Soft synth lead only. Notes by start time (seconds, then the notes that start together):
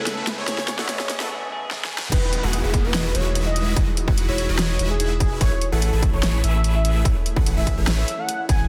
Already playing: A4
0.38 C#5
0.48 C#5
0.79 A4
0.89 C#5
1.20 A4
2.12 B4
2.43 G#4
2.84 B4
3.15 C#5
3.46 D#5
4.28 C#5
4.58 C#5
4.90 G#4
5.20 G#4
5.41 C#5
5.72 A4
6.13 C#5
6.44 E5
6.75 E5
7.57 E5
7.88 E5
8.19 F#5
8.49 G#5